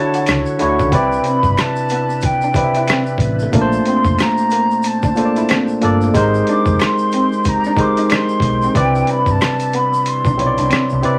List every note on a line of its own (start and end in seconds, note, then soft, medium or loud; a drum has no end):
0.00 0.59 D3 medium
0.00 0.90 D3 medium
0.00 0.60 D4 medium
0.00 0.60 E4 medium
0.00 3.50 E4 medium
0.00 0.61 F#4 medium
0.00 0.90 F#4 medium
0.00 0.62 C#5 loud
0.00 0.90 C#5 medium
0.00 0.57 A5 loud
0.14 0.24 F#4 medium
0.14 closed hi-hat soft
0.14 shaker medium
0.26 0.44 C#2 medium
0.26 0.42 D4 medium
0.26 finger snap medium
0.26 cross-stick medium
0.26 closed hi-hat medium
0.26 shaker medium
0.46 shaker soft
0.59 0.76 D2 medium
0.59 0.90 D3 medium
0.59 0.91 D4 medium
0.59 0.91 E4 medium
0.59 0.92 F#4 medium
0.59 0.92 C#5 medium
0.59 muted clean electric guitar stroke soft
0.59 closed hi-hat medium
0.59 shaker soft
0.79 0.90 C#2 medium
0.79 0.89 A3 medium
0.79 kick medium
0.79 shaker soft
0.89 3.50 C3 medium
0.89 2.17 C3 medium
0.89 2.17 C4 medium
0.89 6.10 D4 medium
0.89 2.17 E4 medium
0.89 3.50 B4 medium
0.89 0.96 F#5 medium
0.89 kick loud
0.89 closed hi-hat medium
0.89 shaker medium
0.93 1.18 C2 medium
0.93 2.18 B4 medium
0.93 2.18 D5 medium
0.93 1.29 G5 medium
1.12 shaker soft
1.24 1.39 C4 medium
1.24 1.61 B5 medium
1.24 closed hi-hat soft
1.24 shaker soft
1.43 1.54 G1 medium
1.43 kick medium
1.43 shaker soft
1.57 2.27 A5 medium
1.57 finger snap medium
1.57 cross-stick loud
1.57 closed hi-hat medium
1.57 shaker medium
1.76 shaker soft
1.89 2.05 B3 medium
1.89 closed hi-hat medium
1.89 shaker soft
2.10 shaker soft
2.21 kick medium
2.21 closed hi-hat medium
2.21 shaker medium
2.25 3.22 G5 medium
2.41 2.52 D4 medium
2.41 shaker soft
2.54 3.48 C3 medium
2.54 3.49 C4 medium
2.54 3.49 E4 medium
2.54 3.50 B4 medium
2.54 2.64 D5 medium
2.54 muted clean electric guitar stroke soft
2.54 kick medium
2.54 closed hi-hat medium
2.54 shaker soft
2.64 3.53 E5 medium
2.74 2.85 E4 medium
2.74 closed hi-hat soft
2.74 shaker soft
2.87 3.03 C4 medium
2.87 finger snap medium
2.87 cross-stick loud
2.87 closed hi-hat medium
2.87 shaker medium
3.06 shaker soft
3.18 3.45 A1 medium
3.18 muted clean electric guitar stroke soft
3.18 kick medium
3.18 closed hi-hat medium
3.18 shaker soft
3.39 3.51 A3 medium
3.39 shaker soft
3.52 3.79 A#1 loud
3.52 4.77 A#2 medium
3.52 6.11 A#2 medium
3.52 4.79 A3 medium
3.52 4.78 A#3 medium
3.52 6.11 C4 medium
3.52 4.78 D4 medium
3.52 3.62 A#4 medium
3.52 3.89 A5 medium
3.52 kick loud
3.52 closed hi-hat medium
3.52 shaker medium
3.62 4.82 C5 medium
3.72 shaker soft
3.85 4.01 C4 medium
3.85 4.19 C6 medium
3.85 closed hi-hat medium
3.85 shaker soft
4.04 4.16 F1 medium
4.04 kick medium
4.04 shaker soft
4.19 4.88 A#5 loud
4.19 finger snap medium
4.19 cross-stick loud
4.19 closed hi-hat medium
4.19 shaker medium
4.37 shaker soft
4.50 4.66 A#3 medium
4.50 closed hi-hat medium
4.50 shaker soft
4.71 shaker soft
4.83 5.83 A5 medium
4.83 closed hi-hat medium
4.83 shaker medium
5.03 5.13 D4 medium
5.03 kick medium
5.03 shaker soft
5.15 5.78 A#2 medium
5.15 5.79 A#3 medium
5.15 5.79 D4 medium
5.15 5.80 A4 medium
5.15 5.25 C5 medium
5.15 muted clean electric guitar stroke soft
5.15 closed hi-hat medium
5.15 shaker soft
5.25 5.83 D5 medium
5.36 5.46 E4 medium
5.36 closed hi-hat soft
5.36 shaker medium
5.49 5.64 C4 medium
5.49 finger snap medium
5.49 cross-stick loud
5.49 closed hi-hat medium
5.49 shaker medium
5.68 shaker soft
5.81 6.08 G1 medium
5.81 6.12 A#2 medium
5.81 6.13 A#3 medium
5.81 6.13 D4 medium
5.81 6.14 A4 medium
5.81 6.14 D5 medium
5.81 muted clean electric guitar stroke soft
5.81 closed hi-hat medium
5.81 shaker soft
6.01 6.12 A3 medium
6.01 shaker soft
6.13 6.40 G#1 loud
6.13 7.39 G#3 medium
6.13 8.73 G#3 medium
6.13 8.73 C4 medium
6.13 7.39 D#4 medium
6.13 7.39 G4 medium
6.13 8.73 G4 medium
6.13 7.40 A#4 medium
6.13 7.40 C5 medium
6.13 6.24 A#5 medium
6.13 kick loud
6.13 closed hi-hat medium
6.13 shaker medium
6.34 shaker soft
6.47 6.62 D4 medium
6.47 6.84 D6 loud
6.47 closed hi-hat medium
6.47 shaker soft
6.66 6.77 F1 medium
6.66 kick medium
6.66 shaker soft
6.79 7.50 C6 loud
6.79 finger snap medium
6.79 cross-stick loud
6.79 closed hi-hat medium
6.79 shaker medium
6.98 shaker soft
7.12 7.27 C4 medium
7.12 closed hi-hat medium
7.12 shaker soft
7.33 shaker soft
7.45 kick medium
7.45 closed hi-hat medium
7.45 shaker medium
7.49 7.83 A#5 medium
7.64 7.75 D4 medium
7.64 shaker soft
7.76 8.70 G#3 medium
7.76 8.71 D#4 medium
7.76 8.71 G4 medium
7.76 8.72 A#4 medium
7.76 8.72 C5 medium
7.76 muted clean electric guitar stroke soft
7.76 kick medium
7.76 closed hi-hat medium
7.76 shaker soft
7.82 8.12 D6 loud
7.97 8.07 D#4 medium
7.97 closed hi-hat soft
7.97 shaker medium
8.10 8.25 D4 medium
8.10 finger snap medium
8.10 cross-stick loud
8.10 closed hi-hat medium
8.10 shaker medium
8.14 8.80 C6 loud
8.29 shaker soft
8.40 8.67 B1 medium
8.40 kick medium
8.40 closed hi-hat medium
8.40 shaker soft
8.45 muted clean electric guitar stroke soft
8.62 8.73 C4 medium
8.62 shaker soft
8.74 9.01 C2 loud
8.74 9.99 C3 medium
8.74 11.19 C3 medium
8.74 11.19 G3 medium
8.74 10.00 C4 medium
8.74 11.19 D4 medium
8.74 11.19 E4 medium
8.74 10.00 E4 medium
8.74 10.00 B4 medium
8.74 10.01 D5 medium
8.74 kick loud
8.74 closed hi-hat medium
8.74 shaker medium
8.79 9.12 G5 medium
8.95 shaker soft
9.07 9.23 C4 medium
9.07 9.33 B5 medium
9.07 closed hi-hat medium
9.07 shaker soft
9.26 9.37 G1 medium
9.26 kick medium
9.26 shaker soft
9.31 9.77 A5 medium
9.41 finger snap medium
9.41 cross-stick loud
9.41 closed hi-hat medium
9.41 shaker medium
9.60 closed hi-hat soft
9.60 shaker soft
9.73 9.88 B3 medium
9.73 10.09 B5 medium
9.73 closed hi-hat medium
9.73 shaker soft
9.93 shaker soft
10.06 11.04 C6 medium
10.06 closed hi-hat medium
10.06 shaker medium
10.25 10.36 B1 medium
10.25 10.35 D4 medium
10.25 kick medium
10.25 shaker soft
10.37 10.59 B1 medium
10.37 11.00 C3 medium
10.37 11.01 B3 medium
10.37 11.00 C4 medium
10.37 11.01 E4 medium
10.37 10.47 C#5 medium
10.37 muted clean electric guitar stroke soft
10.37 closed hi-hat medium
10.47 11.04 D5 medium
10.58 10.69 C2 medium
10.58 10.67 D4 medium
10.58 closed hi-hat soft
10.58 shaker medium
10.70 10.84 C4 medium
10.70 finger snap medium
10.70 cross-stick loud
10.70 closed hi-hat medium
10.70 shaker medium
10.89 11.02 C2 medium
10.89 shaker soft
11.02 11.19 C3 medium
11.02 11.19 C4 medium
11.02 11.19 E4 medium
11.02 11.19 B4 medium
11.02 11.19 D5 medium
11.02 muted clean electric guitar stroke soft
11.02 closed hi-hat medium
11.02 shaker soft